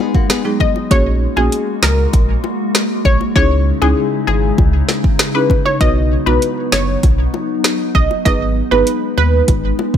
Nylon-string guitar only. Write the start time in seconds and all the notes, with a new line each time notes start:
0.00 B3 G#4
0.14 A#3 F#4
0.30 B3 G#4
0.45 F#3 D#4